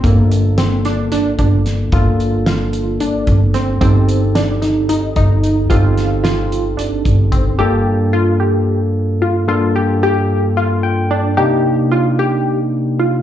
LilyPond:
<<
  \new Staff \with { instrumentName = "Synth arpeggio sound" } { \time 7/8 \key g \minor \tempo 4 = 111 bes4 c'8 d'8 d'8 d'4 | f'4 f'4 d'4 c'8 | c'4 d'8 ees'8 ees'8 ees'4 | f'4 f'4 d'4 c'8 |
g'4 f'8 g'4 r8 f'8 | f'8 g'8 g'4 f'4 d'8 | g'4 f'8 g'4 r8 f'8 | }
  \new Staff \with { instrumentName = "Tine electric piano" } { \time 7/8 \key g \minor << { r2. r8 | r2. r8 | r2. r8 | r2. r8 |
r2. r8 | r2 r8 g''4 | r2. r8 | } \\ { <bes d' f' a'>2.~ <bes d' f' a'>8 | <bes d' f' a'>2.~ <bes d' f' a'>8 | <c' ees' g' a'>2.~ <c' ees' g' a'>8 | <c' ees' g' a'>2.~ <c' ees' g' a'>8 |
<g, bes d' f' a'>2.~ <g, bes d' f' a'>8 | <g, bes d' f' a'>2.~ <g, bes d' f' a'>8 | <c bes d' ees' g'>2.~ <c bes d' ees' g'>8 | } >> }
  \new Staff \with { instrumentName = "Upright bass" } { \clef bass \time 7/8 \key g \minor g,,2 r8 g,,4 | g,,2 r8 g,,4 | g,,2 r8 g,,4 | g,,2 r8 g,,4 |
r2. r8 | r2. r8 | r2. r8 | }
  \new DrumStaff \with { instrumentName = "Drums" } \drummode { \time 7/8 <hh bd>8 hh8 <hh sn>8 <hh sn>8 <hh sn>8 <hh bd>8 <hh sn>8 | <hh bd>8 hh8 <hh sn>8 hh8 hh8 <hh bd>8 <hh sn>8 | <hh bd>8 hh8 <hh sn>8 <hh sn>8 hh8 <hh bd>8 hh8 | <hh bd>8 <hh sn>8 <hh sn>8 hh8 hh8 <hh bd>8 <hh bd>8 |
r4 r4 r4. | r4 r4 r4. | r4 r4 r4. | }
>>